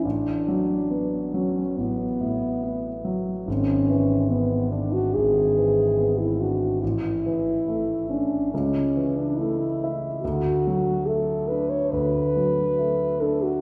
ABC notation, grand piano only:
X:1
M:4/4
L:1/8
Q:1/4=71
K:Bdor
V:1 name="Grand piano" clef=bass
A,,, F, B, F, A,,, A,, B, F, | G,,, E, B, D G,,, E, B, D | A,,, E, A, C C,, E, A, E | D,, F, A, D D,, F, A, D |]